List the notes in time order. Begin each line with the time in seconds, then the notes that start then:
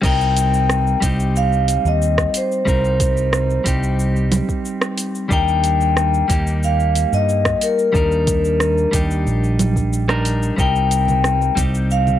0.02 C2 G3 C4 D#4 A#4 G5, kick, crash, cabasa
0.21 cabasa
0.37 open hi-hat, cabasa
0.54 cabasa
0.69 cross-stick, cabasa
0.87 cabasa
1.00 C2 G3 C4 D#4 G4, kick, open hi-hat, cabasa
1.20 cabasa
1.36 F5, cabasa
1.53 cabasa
1.68 open hi-hat, cabasa
1.85 D#2 D#5, cabasa
2.02 cabasa
2.18 kick, cross-stick, cabasa
2.34 C5, open hi-hat, cabasa
2.52 cabasa
2.65 C2 G3 C4 D#4 A#4, kick, cabasa
2.85 cabasa
3.00 kick, open hi-hat, cabasa
3.17 cabasa
3.33 cross-stick, cabasa
3.50 cabasa
3.64 C2 G3 C4 D#4 G4, kick, open hi-hat, cabasa
3.83 cabasa
3.99 cabasa
4.16 cabasa
4.32 open hi-hat, low conga, cabasa
4.49 kick, cabasa
4.65 cabasa
4.82 cross-stick, cabasa
4.98 open hi-hat, cabasa
5.15 cabasa
5.29 D#2 G3 D4 D#4 A#4 G5, kick, cabasa
5.48 cabasa
5.64 open hi-hat, cabasa
5.81 cabasa
5.97 cross-stick, cabasa
6.14 cabasa
6.28 D#2 G3 A#3 D#4 G4, kick, open hi-hat, cabasa
6.47 cabasa
6.63 F5, cabasa
6.80 cabasa
6.95 open hi-hat, cabasa
7.13 G2 D#5, cabasa
7.29 cabasa
7.45 kick, cross-stick, cabasa
7.61 A#4, open hi-hat, cabasa
7.79 cabasa
7.92 D#2 G3 D4 D#4 A#4, kick, cabasa
8.12 cabasa
8.27 kick, open hi-hat, cabasa
8.45 cabasa
8.60 cross-stick, cabasa
8.78 cabasa
8.91 D#2 G3 D4 D#4 G4, kick, open hi-hat, cabasa
9.11 cabasa
9.27 A#1, cabasa
9.44 cabasa
9.59 open hi-hat, low conga, cabasa
9.76 kick, cabasa
9.93 cabasa
10.08 G3 D4 D#4 A#4, cross-stick, cabasa
10.25 open hi-hat, cabasa
10.43 cabasa
10.56 C2 G3 C4 D#4 A#4 G5, kick, cabasa
10.76 cabasa
10.91 open hi-hat, cabasa
11.08 high conga, cabasa
11.24 cross-stick, cabasa
11.41 high bongo, cabasa
11.55 C2 G3 C4 D#4 G4, kick, open hi-hat, low conga, cabasa
11.75 cabasa
11.91 F5, cabasa
12.07 high conga, cabasa